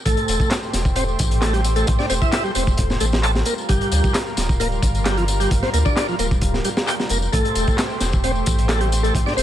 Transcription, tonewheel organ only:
0, 0, Header, 1, 2, 480
1, 0, Start_track
1, 0, Tempo, 454545
1, 59, Time_signature, 4, 2, 24, 8
1, 9956, End_track
2, 0, Start_track
2, 0, Title_t, "Tonewheel organ"
2, 0, Program_c, 0, 16
2, 58, Note_on_c, 0, 57, 84
2, 527, Note_off_c, 0, 57, 0
2, 1016, Note_on_c, 0, 60, 86
2, 1099, Note_off_c, 0, 60, 0
2, 1498, Note_on_c, 0, 57, 85
2, 1618, Note_off_c, 0, 57, 0
2, 1620, Note_on_c, 0, 55, 100
2, 1697, Note_off_c, 0, 55, 0
2, 1860, Note_on_c, 0, 57, 99
2, 1970, Note_off_c, 0, 57, 0
2, 2100, Note_on_c, 0, 62, 80
2, 2176, Note_off_c, 0, 62, 0
2, 2214, Note_on_c, 0, 60, 95
2, 2266, Note_off_c, 0, 60, 0
2, 2340, Note_on_c, 0, 64, 74
2, 2570, Note_off_c, 0, 64, 0
2, 2575, Note_on_c, 0, 55, 99
2, 2654, Note_off_c, 0, 55, 0
2, 2696, Note_on_c, 0, 60, 76
2, 2780, Note_off_c, 0, 60, 0
2, 3175, Note_on_c, 0, 57, 108
2, 3226, Note_off_c, 0, 57, 0
2, 3415, Note_on_c, 0, 69, 84
2, 3499, Note_off_c, 0, 69, 0
2, 3653, Note_on_c, 0, 58, 80
2, 3738, Note_off_c, 0, 58, 0
2, 3894, Note_on_c, 0, 55, 85
2, 4365, Note_off_c, 0, 55, 0
2, 4857, Note_on_c, 0, 58, 89
2, 4940, Note_off_c, 0, 58, 0
2, 5338, Note_on_c, 0, 55, 79
2, 5458, Note_off_c, 0, 55, 0
2, 5464, Note_on_c, 0, 53, 103
2, 5539, Note_off_c, 0, 53, 0
2, 5703, Note_on_c, 0, 55, 103
2, 5812, Note_off_c, 0, 55, 0
2, 5943, Note_on_c, 0, 60, 77
2, 6018, Note_off_c, 0, 60, 0
2, 6058, Note_on_c, 0, 58, 97
2, 6107, Note_off_c, 0, 58, 0
2, 6180, Note_on_c, 0, 62, 78
2, 6410, Note_off_c, 0, 62, 0
2, 6426, Note_on_c, 0, 53, 96
2, 6499, Note_off_c, 0, 53, 0
2, 6541, Note_on_c, 0, 58, 73
2, 6622, Note_off_c, 0, 58, 0
2, 7021, Note_on_c, 0, 55, 108
2, 7069, Note_off_c, 0, 55, 0
2, 7259, Note_on_c, 0, 67, 79
2, 7341, Note_off_c, 0, 67, 0
2, 7503, Note_on_c, 0, 58, 78
2, 7583, Note_off_c, 0, 58, 0
2, 7736, Note_on_c, 0, 57, 79
2, 8206, Note_off_c, 0, 57, 0
2, 8700, Note_on_c, 0, 60, 86
2, 8782, Note_off_c, 0, 60, 0
2, 9178, Note_on_c, 0, 57, 84
2, 9298, Note_off_c, 0, 57, 0
2, 9300, Note_on_c, 0, 55, 101
2, 9377, Note_off_c, 0, 55, 0
2, 9539, Note_on_c, 0, 57, 105
2, 9650, Note_off_c, 0, 57, 0
2, 9782, Note_on_c, 0, 62, 77
2, 9857, Note_off_c, 0, 62, 0
2, 9894, Note_on_c, 0, 60, 101
2, 9946, Note_off_c, 0, 60, 0
2, 9956, End_track
0, 0, End_of_file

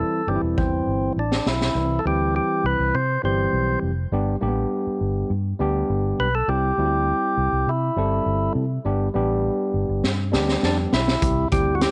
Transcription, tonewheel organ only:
0, 0, Header, 1, 2, 480
1, 0, Start_track
1, 0, Key_signature, 0, "major"
1, 0, Tempo, 591716
1, 1426, Time_signature, 4, 2, 24, 8
1, 9662, End_track
2, 0, Start_track
2, 0, Title_t, "Tonewheel organ"
2, 0, Program_c, 0, 16
2, 0, Note_on_c, 0, 69, 78
2, 229, Note_on_c, 0, 67, 75
2, 239, Note_off_c, 0, 69, 0
2, 337, Note_off_c, 0, 67, 0
2, 469, Note_on_c, 0, 60, 68
2, 915, Note_off_c, 0, 60, 0
2, 967, Note_on_c, 0, 62, 67
2, 1197, Note_on_c, 0, 64, 82
2, 1204, Note_off_c, 0, 62, 0
2, 1615, Note_on_c, 0, 69, 58
2, 1627, Note_off_c, 0, 64, 0
2, 1669, Note_off_c, 0, 69, 0
2, 1679, Note_on_c, 0, 67, 85
2, 1905, Note_off_c, 0, 67, 0
2, 1915, Note_on_c, 0, 67, 84
2, 2157, Note_off_c, 0, 67, 0
2, 2158, Note_on_c, 0, 71, 93
2, 2391, Note_on_c, 0, 72, 105
2, 2399, Note_off_c, 0, 71, 0
2, 2612, Note_off_c, 0, 72, 0
2, 2636, Note_on_c, 0, 72, 82
2, 3078, Note_off_c, 0, 72, 0
2, 5029, Note_on_c, 0, 71, 96
2, 5149, Note_on_c, 0, 69, 90
2, 5150, Note_off_c, 0, 71, 0
2, 5264, Note_on_c, 0, 67, 109
2, 5270, Note_off_c, 0, 69, 0
2, 6239, Note_on_c, 0, 64, 84
2, 6252, Note_off_c, 0, 67, 0
2, 6918, Note_off_c, 0, 64, 0
2, 8640, Note_on_c, 0, 62, 79
2, 8744, Note_off_c, 0, 62, 0
2, 8873, Note_on_c, 0, 64, 81
2, 9315, Note_off_c, 0, 64, 0
2, 9347, Note_on_c, 0, 67, 91
2, 9532, Note_on_c, 0, 66, 67
2, 9533, Note_off_c, 0, 67, 0
2, 9586, Note_off_c, 0, 66, 0
2, 9591, Note_on_c, 0, 67, 89
2, 9662, Note_off_c, 0, 67, 0
2, 9662, End_track
0, 0, End_of_file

